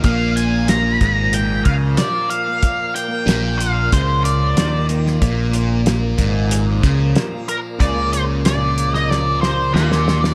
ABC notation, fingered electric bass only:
X:1
M:4/4
L:1/8
Q:1/4=93
K:Bbmix
V:1 name="Fingered electric bass" clef=bass
B,,,3 A,,,2 _D,, z2 | z2 B,,,2 _D,,2 E,,2 | B,,,3 A,,,2 _D,, z2 | _D,,6 E,,2 |]